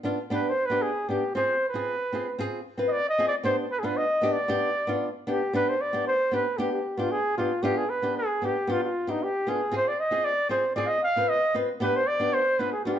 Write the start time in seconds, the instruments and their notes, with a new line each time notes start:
0.03 nylon-string guitar B3 D4 F4
0.30 nylon-string guitar B3 D4 G4, flugelhorn B4
0.49 flugelhorn C5
0.66 flugelhorn B4
0.70 nylon-string guitar B3 D4 G4
0.82 flugelhorn G#4
1.08 nylon-string guitar B3 D4 G4, flugelhorn G4
1.35 nylon-string guitar C4 F4 G#4, flugelhorn C5
1.68 flugelhorn B4
1.74 nylon-string guitar C4 F4 G#4
2.13 nylon-string guitar C4 F4 G#4
2.39 nylon-string guitar C4 F4 G#4
2.77 nylon-string guitar C4 F4 B4
2.88 flugelhorn D#5
2.92 flugelhorn D5
3.09 flugelhorn D#5
3.18 nylon-string guitar C4 F4 G#4
3.28 flugelhorn D5
3.43 nylon-string guitar B3 D4 G4, flugelhorn C5
3.72 flugelhorn B4
3.79 nylon-string guitar B3, flugelhorn G#4
3.83 nylon-string guitar D4 F4, flugelhorn B4
3.97 flugelhorn D#5
4.22 nylon-string guitar B3 D4 G4
4.32 flugelhorn D5
4.48 nylon-string guitar B3 D4 G4
4.87 nylon-string guitar B3 D4 F4
5.27 nylon-string guitar B3 D4 G4, flugelhorn G4
5.53 nylon-string guitar B3 D4 G4, flugelhorn B4
5.69 flugelhorn C5
5.81 flugelhorn D5
5.93 nylon-string guitar B3 D4 G4
6.07 flugelhorn C5
6.31 nylon-string guitar B3 D4 G4, flugelhorn B4
6.57 nylon-string guitar B3 D4 G4, flugelhorn G4
6.72 flugelhorn G4
6.97 nylon-string guitar B3 D4 G4, flugelhorn F4
7.11 flugelhorn G#4
7.37 nylon-string guitar B3 D4 G4, flugelhorn F4
7.63 nylon-string guitar B3 D4 F4, flugelhorn G4
7.77 flugelhorn G#4
7.89 flugelhorn B4
8.02 nylon-string guitar B3 D4 G4
8.17 flugelhorn G#4
8.42 nylon-string guitar B3 D4 G4, flugelhorn G4
8.67 nylon-string guitar B3 D4 G4, flugelhorn F4
8.84 flugelhorn F4
9.07 nylon-string guitar B3 D4 G4, flugelhorn D#4
9.23 flugelhorn G4
9.47 nylon-string guitar B3 D4 F4, flugelhorn G#4
9.72 nylon-string guitar C4 F4 G#4
9.76 flugelhorn C5
9.88 flugelhorn D5
10.00 flugelhorn D#5
10.11 nylon-string guitar C4 F4 G#4
10.24 flugelhorn D5
10.49 nylon-string guitar C4 F4 G#4, flugelhorn C5
10.76 nylon-string guitar C4 F4 G#4, flugelhorn D5
10.86 flugelhorn D#5 F5
11.03 flugelhorn F5
11.16 nylon-string guitar C4 F4 B4
11.29 flugelhorn D#5
11.54 nylon-string guitar C4 F4 B4
11.80 nylon-string guitar B3 D4 G4, flugelhorn B4
11.96 flugelhorn C5
12.07 flugelhorn D5
12.20 nylon-string guitar B3 D4 G4
12.34 flugelhorn C5
12.59 nylon-string guitar B3 D4 F4, flugelhorn B4
12.72 flugelhorn G#4
12.85 nylon-string guitar B3 D4 F4, flugelhorn G4